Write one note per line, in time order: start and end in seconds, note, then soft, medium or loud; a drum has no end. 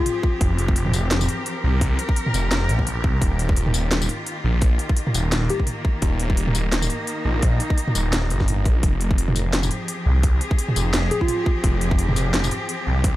0.00 3.22 F3 medium
0.00 4.30 C4 medium
0.00 0.47 F4 loud
0.00 8.83 G4 medium
0.00 1.30 G#4 medium
0.06 closed hi-hat medium
0.06 mid tom soft
0.23 kick loud
0.41 0.93 F1 loud
0.41 kick loud
0.41 closed hi-hat medium
0.58 closed hi-hat medium
0.68 kick loud
0.76 closed hi-hat medium
0.86 mid tom medium
0.94 1.28 F1 medium
0.94 closed hi-hat medium
0.94 mid tom soft
0.94 tambourine medium
1.11 snare loud
1.11 closed hi-hat medium
1.21 4.02 A#4 medium
1.21 mid tom medium
1.21 tambourine medium
1.29 closed hi-hat medium
1.46 closed hi-hat medium
1.64 1.98 C2 medium
1.64 mid tom soft
1.81 kick loud
1.81 closed hi-hat medium
1.99 closed hi-hat medium
2.09 kick loud
2.16 closed hi-hat medium
2.26 mid tom medium
2.34 2.71 F1 medium
2.34 closed hi-hat medium
2.34 mid tom soft
2.34 tambourine medium
2.51 snare loud
2.51 closed hi-hat medium
2.69 3.06 A#1 loud
2.69 closed hi-hat medium
2.69 mid tom soft
2.79 kick medium
2.87 closed hi-hat medium
2.87 mid tom soft
3.04 3.20 C2 medium
3.04 kick loud
3.22 3.73 D#1 loud
3.22 8.83 D#3 medium
3.22 kick loud
3.22 closed hi-hat medium
3.38 9.51 A#3 medium
3.38 6.58 F4 medium
3.38 closed hi-hat medium
3.49 kick loud
3.57 closed hi-hat medium
3.66 mid tom medium
3.74 4.08 D#1 medium
3.74 closed hi-hat medium
3.74 mid tom soft
3.74 tambourine medium
3.91 snare loud
3.91 closed hi-hat medium
4.02 mid tom soft
4.02 tambourine medium
4.09 closed hi-hat medium
4.27 closed hi-hat medium
4.44 4.78 A#1 medium
4.44 mid tom soft
4.62 kick loud
4.62 closed hi-hat medium
4.79 closed hi-hat medium
4.89 kick loud
4.97 closed hi-hat medium
5.07 mid tom medium
5.14 5.49 D#1 loud
5.14 closed hi-hat medium
5.14 mid tom soft
5.14 tambourine medium
5.32 snare loud
5.32 closed hi-hat medium
5.50 5.58 G4 medium
5.50 closed hi-hat medium
5.50 mid tom soft
5.60 kick medium
5.67 closed hi-hat medium
5.67 mid tom soft
5.85 kick loud
6.02 6.54 D#1 loud
6.02 kick loud
6.02 closed hi-hat medium
6.20 closed hi-hat medium
6.30 kick medium
6.37 closed hi-hat medium
6.47 9.81 D#4 medium
6.47 mid tom medium
6.55 6.89 D#1 medium
6.55 closed hi-hat medium
6.55 mid tom soft
6.55 tambourine medium
6.72 snare loud
6.72 closed hi-hat medium
6.82 mid tom medium
6.82 tambourine medium
6.90 closed hi-hat medium
7.07 closed hi-hat medium
7.25 7.59 A#1 medium
7.25 mid tom soft
7.42 kick loud
7.42 closed hi-hat medium
7.60 closed hi-hat medium
7.70 kick loud
7.78 closed hi-hat medium
7.88 mid tom medium
7.95 8.32 D#1 medium
7.95 closed hi-hat medium
7.95 mid tom soft
7.95 tambourine medium
8.13 snare loud
8.13 closed hi-hat medium
8.30 8.67 G1 loud
8.30 closed hi-hat medium
8.30 mid tom soft
8.40 kick medium
8.40 snare soft
8.48 closed hi-hat medium
8.48 mid tom soft
8.65 8.82 A#1 medium
8.65 kick loud
8.65 closed hi-hat soft
8.83 9.35 F1 loud
8.83 13.16 F3 medium
8.83 kick loud
8.83 closed hi-hat medium
9.01 closed hi-hat medium
9.11 kick loud
9.18 closed hi-hat medium
9.26 13.16 C4 medium
9.26 mid tom medium
9.36 9.70 F1 medium
9.36 closed hi-hat medium
9.36 mid tom soft
9.36 tambourine medium
9.43 13.16 G#4 medium
9.52 13.16 G4 medium
9.52 snare loud
9.52 closed hi-hat medium
9.63 mid tom medium
9.63 tambourine medium
9.71 closed hi-hat medium
9.88 closed hi-hat medium
10.06 10.40 C2 medium
10.06 mid tom soft
10.23 kick loud
10.23 closed hi-hat medium
10.41 closed hi-hat medium
10.51 kick loud
10.59 closed hi-hat medium
10.69 mid tom medium
10.76 11.10 F1 medium
10.76 closed hi-hat medium
10.76 mid tom soft
10.76 tambourine medium
10.93 snare loud
10.93 closed hi-hat medium
11.11 11.19 G#4 loud
11.11 closed hi-hat medium
11.11 mid tom soft
11.21 11.70 F4 loud
11.21 kick medium
11.28 closed hi-hat medium
11.28 mid tom soft
11.46 kick loud
11.64 12.15 F1 loud
11.64 kick loud
11.64 closed hi-hat medium
11.81 closed hi-hat medium
11.91 kick loud
11.99 closed hi-hat medium
12.09 mid tom medium
12.16 12.50 F1 medium
12.16 closed hi-hat medium
12.16 mid tom soft
12.16 tambourine medium
12.34 snare loud
12.34 closed hi-hat medium
12.44 mid tom medium
12.44 tambourine medium
12.51 closed hi-hat medium
12.69 closed hi-hat medium
12.87 13.16 C2 medium
12.87 mid tom soft
13.04 kick loud
13.04 closed hi-hat medium